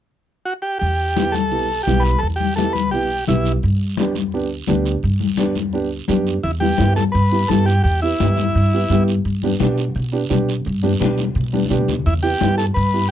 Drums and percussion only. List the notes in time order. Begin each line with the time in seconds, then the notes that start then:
0.82 high conga, long guiro
1.17 high conga, short guiro
1.34 high conga, short guiro
1.52 high conga, long guiro
1.87 high conga, short guiro
2.05 short guiro
2.23 high conga, long guiro
2.40 high conga
2.58 high conga, short guiro
2.75 high conga, short guiro
2.92 high conga, long guiro
3.27 high conga, short guiro
3.45 short guiro
3.63 high conga, long guiro
3.97 high conga, short guiro
4.15 high conga, short guiro
4.32 high conga, long guiro
4.67 high conga, short guiro
4.85 short guiro
5.03 high conga, long guiro
5.20 high conga
5.37 high conga, short guiro
5.55 high conga, short guiro
5.73 high conga, long guiro
6.08 high conga, short guiro
6.27 short guiro
6.44 high conga, long guiro
6.61 high conga
6.78 high conga, short guiro
6.96 high conga, short guiro
7.15 high conga, long guiro
7.50 high conga, short guiro
7.68 short guiro
7.85 high conga, long guiro
8.20 high conga, short guiro
8.37 high conga, short guiro
8.55 high conga, long guiro
8.90 high conga, short guiro
9.08 short guiro
9.25 high conga, long guiro
9.43 high conga
9.60 high conga, short guiro
9.78 short guiro
9.95 high conga, long guiro
10.30 high conga, short guiro
10.49 short guiro
10.65 high conga, long guiro
10.83 high conga
11.00 high conga, short guiro
11.18 high conga, short guiro
11.35 high conga, long guiro
11.54 high conga
11.65 high conga
11.71 short guiro
11.77 low conga
11.88 low conga, short guiro
12.06 high conga, long guiro
12.41 high conga, short guiro
12.59 short guiro
12.76 high conga, long guiro